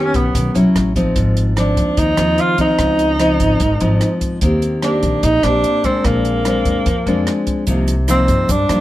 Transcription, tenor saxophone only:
Already playing: C#4
0.16 B3
1.60 D4
1.98 D#4
2.40 F4
2.61 D#4
4.83 D4
5.24 D#4
5.44 D4
5.85 C4
6.05 A#3
8.10 C4
8.51 D4

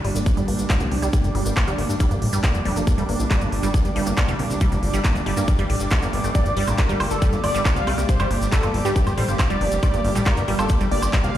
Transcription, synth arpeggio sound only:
0.05 G3
0.15 A#3
0.37 G3
0.48 A#3
0.70 G3
0.81 A#3
1.02 G3
1.13 A#3
1.35 G3
1.46 A#3
1.68 G3
1.78 A#3
2.00 G3
2.11 A#3
2.33 G3
2.44 A#3
2.65 G3
2.76 A#3
2.98 G3
3.09 A#3
3.31 G3
3.41 A#3
3.63 G3
3.74 A#3
3.96 G3
4.07 A#3
4.28 G3
4.39 A#3
4.61 G3
4.72 A#3
4.94 G3
5.04 A#3
5.26 G3
5.37 A#3
5.59 G3
5.70 G4
5.91 A3
6.02 A#3
6.24 A3
6.35 A#3
6.57 G3
6.68 A#3
6.89 G3
7.00 A#3
7.22 G3
7.33 A#3
7.55 G3
7.65 A#3
7.87 G3
7.98 A#3
8.20 G3
8.31 A#3
8.52 G3
8.63 A#3
8.85 G3
8.96 A#3
9.18 G3
9.28 A#3
9.50 G3
9.61 A#3
9.83 G3
9.94 A#3
10.15 G3
10.26 A#3
10.48 G3
10.59 A#3
10.81 G3
10.91 A#3
11.13 G3
11.24 A#3

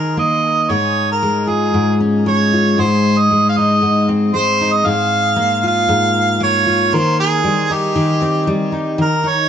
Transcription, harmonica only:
Already playing: A#4
0.19 D#5
0.71 C#5
1.11 A#4
1.48 G#4
2.28 C#5
2.80 C5
3.19 D#5
3.49 F5
3.57 D#5
4.34 C5
4.73 D#5
4.86 F5
5.67 F5
6.43 C#5
6.95 C5
7.20 G#4
7.73 G4
9.01 A#4
9.28 C#5

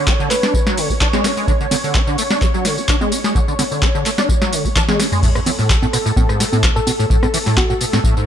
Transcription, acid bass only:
0.07 D4
0.20 D3
0.31 A3
0.43 D4
0.54 D3
0.67 F#3
0.78 D3
0.90 D4
1.01 D4
1.13 G#3
1.24 D4
1.37 G#3
1.48 D3
1.60 D3
1.71 D3
1.84 D3
1.95 D4
2.07 D3
2.18 A3
2.31 D4
2.42 D3
2.54 F#3
2.65 D3
2.77 D4
2.88 D4
3.01 G#3
3.12 D4
3.24 G#3
3.35 D3
3.48 D3
3.59 D3
3.71 D3
3.82 D4
3.95 D3
4.06 A3
4.18 D4
4.29 D3
4.42 F#3
4.53 D3
4.65 D4
4.76 D4
4.88 G#3
5.00 D4
5.12 G#3
5.23 A2
5.36 G#2
5.47 E3
5.59 A2
5.70 A1
5.82 A2
5.93 B2
6.06 A2
6.17 A2
6.29 G#2
6.40 B2
6.53 A2
6.64 A1
6.76 A2
6.87 B2
6.99 A2
7.10 A2
7.23 G#2
7.34 E3
7.46 A2
7.57 A1
7.70 A2
7.81 B2
7.93 A2
8.04 A2
8.17 G#2

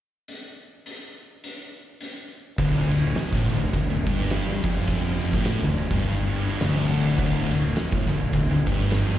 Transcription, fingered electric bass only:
2.58 D1
2.91 D1
3.32 A1
3.48 D1
3.73 D1
3.90 D1
4.06 G1
4.64 F1
5.33 A1
5.62 D1
5.91 G1
6.60 D1
7.18 D1
7.52 D1
7.92 A1
8.09 D1
8.33 D1
8.50 D1
8.67 G1

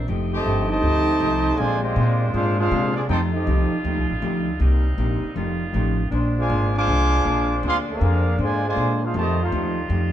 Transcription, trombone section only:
0.32 C3 D#3 A3
0.68 C3 A3 D#4
1.56 D3 F3 G#3
1.80 G#3 D4 G4
2.33 G#3 D4 F4
2.57 G#3 D4 F4
2.95 F3 G#3 D4
3.08 C4 D#4 G4
3.32 A3 C4 D#4
6.37 F3 G#3 D4
6.76 F3 G#3 D4
7.65 F3 G#3 C4
7.89 D3 F3 A#3
8.40 D3 F3 G#3
8.65 D3 F3 G#3
9.02 G#3 D4 F4
9.15 C3 D#3 A3
9.41 A3 C4 F4

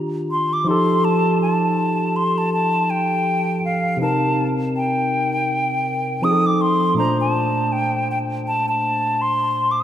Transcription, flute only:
0.32 C6
0.53 D6
0.68 C6
1.04 A5
1.42 A5
2.16 C6
2.38 A5
2.54 A5
2.90 G5
3.65 F5
4.02 A5
4.77 G5
6.24 D#6
6.46 D6
6.61 C6
6.98 A#5
7.21 A5
7.72 G5
8.11 G5
8.48 A5
8.69 A5
9.21 C6
9.71 D6
9.80 D#6

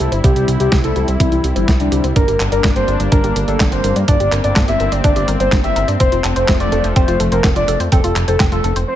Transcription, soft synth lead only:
Already playing: A4
0.24 G4
0.60 G4
0.84 A4
1.20 E4
1.56 E4
1.80 D4
2.16 A#4
2.52 A#4
2.76 C5
3.12 A#4
3.48 A4
3.72 C5
4.08 D5
4.44 D5
4.68 E5
5.04 D5
5.40 C5
5.64 E5
6.00 C5
6.36 C5
6.60 D5
6.96 C5
7.32 A#4
7.56 D5
7.92 A4
8.28 A4
8.52 A4
8.88 C5

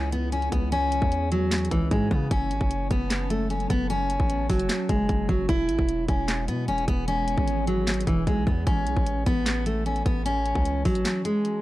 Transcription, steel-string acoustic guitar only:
Already playing: C#4
0.12 B3
0.32 C#4
0.52 B3
0.72 C#4
1.32 F#3
1.71 E3
1.91 G#3
2.31 C#4
2.91 B3
3.30 A3
3.50 C#4
3.70 B3
3.90 C#4
4.49 F#3
4.89 G#3
5.29 F#3
5.49 E4
6.09 C#4
6.48 B3
6.68 C#4
6.88 B3
7.08 C#4
7.67 F#3
8.07 E3
8.27 G#3
8.47 B3
8.67 C#4
9.26 B3
9.66 A3
9.86 C#4
10.06 B3
10.26 C#4
10.85 F#3
11.25 G#3

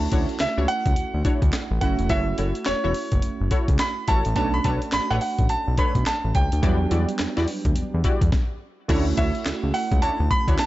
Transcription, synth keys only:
Already playing: A3 C#4 E4 F#4
1.81 A3 C#4 E4 F#4
4.35 A3 C#4 D4 F#4
6.62 F#3 G3 B3 D4
8.88 A3 C#4 E4 F#4

